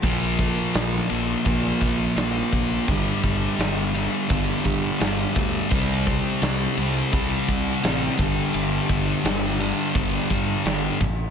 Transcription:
<<
  \new Staff \with { instrumentName = "Distorted electric guitar" } { \clef bass \time 4/4 \key g \minor \tempo 4 = 85 <bes, f bes>4. <bes, f bes>4. <bes, f bes>4 | <g, d g>4. <g, d g>4. <g, d g>4 | <c g c'>4. <c g c'>4. <c g c'>8 <g, d g>8~ | <g, d g>4 <g, d g>4. <g, d g>4 r8 | }
  \new Staff \with { instrumentName = "Distorted electric guitar" } { \clef bass \time 4/4 \key g \minor <bes, f bes>2 <bes, f bes>2 | <g, d g>2 <g, d g>2 | <c g c'>2 <c g c'>4. <g, d g>8~ | <g, d g>4. <g, d g>2 r8 | }
  \new Staff \with { instrumentName = "Fingered electric bass" } { \clef bass \time 4/4 \key g \minor bes,,4 bes,,8 bes,,8 bes,,8 bes,,8 bes,,8 bes,,8 | g,,8 g,,8 g,,4 g,,8 g,8 g,,8 d,8 | c,4 c,8 c,8 c,8 c,8 a,,8 g,,8 | g,,8 g,,8 g,,4 g,,8 g,8 g,,8 a,,8 | }
  \new DrumStaff \with { instrumentName = "Drums" } \drummode { \time 4/4 <bd cymr>8 <bd cymr>8 <cymr sn>8 cymr8 <bd cymr>16 sn16 <bd cymr>8 <cymr sn>8 <bd cymr>8 | <cymc bd>8 <bd cymr>8 <cymr sn>8 <cymr sn>8 <bd cymr>16 sn16 <bd cymr>8 <cymr sn>8 <bd cymr>8 | <bd cymr>8 <bd cymr>8 <cymr sn>8 cymr8 <bd cymr>8 <bd cymr>8 <cymr sn>8 <bd cymr>8 | cymr8 <bd cymr>8 <cymr sn>8 <cymr sn>8 <bd cymr>16 sn16 <bd cymr>8 <cymr sn>8 <bd cymr>8 | }
>>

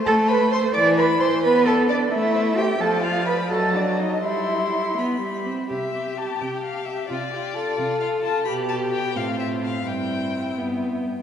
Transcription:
<<
  \new Staff \with { instrumentName = "Violin" } { \time 6/8 \key c \major \tempo 4. = 86 a''8 b''8 c'''8 d'''8 b''8 c'''8 | b''8 a''8 d''8 e''4 g''8 | a''8 f''8 b''8 a''8 d''8 dis''8 | e''4. r4. |
g'2. | f'8 g'8 a'2 | g'4. f'4. | e'2~ e'16 r8. | }
  \new Staff \with { instrumentName = "Violin" } { \time 6/8 \key c \major r8 c''8 c''8 r8 c''8 c''8 | r8 d''8 d''8 r8 c''8 c''8 | d''4. dis''4. | c'''4. b''4 r8 |
e''4 a''8 g''8 f''8 e''8 | d''2 f''8 a''8 | b''8 a''8 g''8 f''8 e''8 f''8 | g''4. r4. | }
  \new Staff \with { instrumentName = "Cello" } { \time 6/8 \key c \major a'8 b'8 c''8 d''8 b'8 c''8 | b'8 a'8 d'8 e'4 g'8 | a'8 f'8 b'8 a'8 d'8 dis'8 | e'4. r4. |
c4. c4. | c4. c4. | b,4. a,4. | g,4. g,4 r8 | }
  \new Staff \with { instrumentName = "Viola" } { \time 6/8 \key c \major a4. e4. | b4. a4. | f4. fis4. | g4. b8 g8 c'8 |
g'8 g'8 g'8 g'8 g'8 g'8 | f'8 f'8 f'8 f'8 f'8 f'8 | g'4. c'4. | c'4. b4 r8 | }
>>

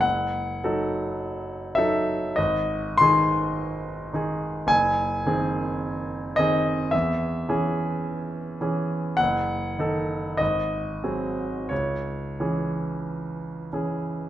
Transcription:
\new Staff \with { instrumentName = "Grand piano" } { \time 4/4 \key cis \minor \tempo 4 = 52 << { fis''4. e''8 dis''8 bis''4. | gis''4. dis''8 e''8 r4. | fis''4 dis''4 cis''4. r8 | } \\ { fis,,8 <fis dis' a'>4 <fis dis' a'>8 gis,,8 <dis dis' gis'>4 <dis dis' gis'>8 | fis,,8 <dis bis gis'>4 <dis bis gis'>8 e,8 <e cis' gis'>4 <e cis' gis'>8 | fis,,8 <dis dis' a'>8 gis,,8 <fis bis gis'>8 cis,8 <e cis' gis'>4 <e cis' gis'>8 | } >> }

